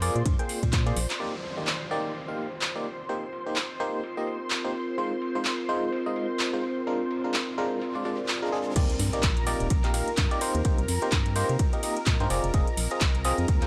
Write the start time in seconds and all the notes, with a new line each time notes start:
Already playing: F2 C4 F4 A#4 C5 C6
0.02 A#3 F4 G#4 D5, open hi-hat, ride
0.16 A#2, closed hi-hat
0.26 G2, kick, closed hi-hat, ride
0.39 A#3 F4 G#4 G5, closed hi-hat
0.49 open hi-hat, ride
0.63 A#2, kick, closed hi-hat, ride
0.73 kick, clap, closed hi-hat
0.86 A#3 F4 G#4 D5, closed hi-hat, ride
0.96 A#1, open hi-hat, ride
1.10 clap, closed hi-hat
1.20 D#3 A#3 D#4 G4 C5 D5 C6, ride, downlifter
1.44 ride
1.57 A#3 D#4 G4 D5, ride
1.67 clap, ride
1.91 A#3 D#4 G4 D5, ride
2.15 ride
2.28 A#3 D#4 G4 F5
2.38 ride
2.61 clap, ride
2.75 A#3 D#4 G4 D5, snare
2.85 ride
3.09 A#3 D#4 G4 C5, ride
3.33 ride
3.46 A#3 D#4 G4 C5, snare
3.56 clap, ride
3.80 A#3 D#4 G4 C5, ride
4.03 ride
4.17 A#3 D#4 G4 D#5, ride
4.27 ride
4.50 clap, ride
4.64 A#3 D#4 G4 C5, snare
4.74 ride
4.98 G#3 D#4 F4 C5, ride, riser
5.22 ride
5.35 G#3 D#4 F4 C5, ride
5.45 clap, ride
5.56 D#5
5.69 G#3 D#4 F4 C5, ride
5.92 ride
6.06 G#3 D#4 F4 D#5
6.16 ride
6.39 clap, ride
6.53 G#3 D#4 F4 C5, snare
6.63 ride
6.87 G#3 D4 F4 A#4, ride
7.11 ride
7.24 G#3 D4 F4 A#4, snare
7.34 clap, ride
7.40 D5
7.58 G#3 D4 F4 A#4, ride
7.82 ride
7.95 G#3 D4 F4 D5, ride
8.05 G#3 D4 F4 D5, ride
8.28 clap, ride
8.42 G#3 D4 F4 A#4, snare
8.52 G#3 D4 F4 G#4, ride
8.76 D#2 A#3 D#4 G4 A#4 D5 A#5, kick, closed hi-hat, crash, ride, impact
8.90 closed hi-hat
8.99 G2, open hi-hat, ride
9.13 A#3 D#4 G4 D5, closed hi-hat, ride
9.23 A#1, kick, snare, clap, closed hi-hat, ride
9.37 closed hi-hat
9.47 A#3 D#4 G4 D5, open hi-hat, ride
9.60 D#1, closed hi-hat
9.70 A#1, kick, closed hi-hat, ride
9.84 A#3 D#4 G4 F5, clap, closed hi-hat
9.94 A#3 D#4 G4 F5, open hi-hat, ride
10.08 closed hi-hat
10.17 G2, kick, snare, clap, closed hi-hat, ride
10.31 A#3 D#4 G4 D5, snare, closed hi-hat
10.41 A#3 D#4 G4 C5, open hi-hat, ride
10.55 D#2, closed hi-hat
10.65 A#3 D#4 G4 C5, kick, closed hi-hat, ride
10.78 C2, closed hi-hat
10.88 F2, open hi-hat, ride
11.02 A#3 D#4 G4 C5, snare, closed hi-hat
11.12 G2, kick, snare, clap, closed hi-hat, ride
11.26 closed hi-hat
11.36 A#3 D#4 G4 C5, open hi-hat, ride
11.40 D#5
11.49 C3, closed hi-hat
11.59 kick, closed hi-hat, ride
11.73 A#3 D#4 G4 D#5, closed hi-hat, ride
11.83 A#3 D#4 G4 D#5, open hi-hat, ride
11.97 closed hi-hat
12.06 A#2, kick, snare, clap, closed hi-hat, ride
12.20 G2 A#3 D#4 G4 C5, snare, closed hi-hat
12.30 F1 C4 F4 G#4 D5, open hi-hat, ride
12.44 F1, closed hi-hat
12.54 F1 C4 F4 G#4 D#5, kick, closed hi-hat, ride
12.67 closed hi-hat
12.77 A#1, open hi-hat, ride
12.91 C4 F4 G#4 D#5, closed hi-hat, ride
13.01 C2, kick, snare, clap, closed hi-hat, ride
13.15 closed hi-hat
13.25 C4 F4 G#4 D#5, open hi-hat, ride
13.38 F2, closed hi-hat
13.48 D#2, kick, closed hi-hat, ride
13.62 C4 F4 G#4 G5, clap, closed hi-hat